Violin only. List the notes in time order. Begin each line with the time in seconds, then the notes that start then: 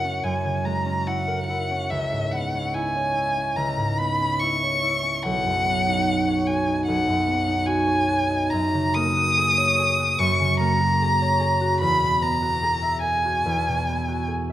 Already playing: F#5
0.23 G#5
0.65 A#5
1.07 F#5
1.46 F#5
1.90 E5
2.32 F#5
2.74 G#5
3.57 A#5
3.98 B5
4.40 C#6
5.23 F#5
6.46 G#5
6.87 F#5
7.66 G#5
8.50 A#5
8.95 D#6
10.19 C#6
10.60 A#5
11.81 B5
12.23 A#5
13.03 G#5